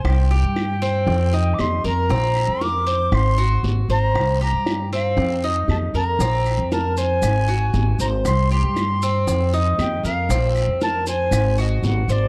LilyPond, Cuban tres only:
\new Staff \with { instrumentName = "Cuban tres" } { \time 4/4 \key bes \major \tempo 4 = 117 c''8 g'4 c'4 ees'4 bes'8 | c'4 bes'8 c''4 ges'4 c''8~ | c''8 g'4 c'4 ees'4 bes'8 | c'4 bes'8 c''4 ges'4 c''8~ |
c''8 g'4 c'4 ees'4 bes'8 | c'4 bes'8 c''4 ges'4 c''8 | }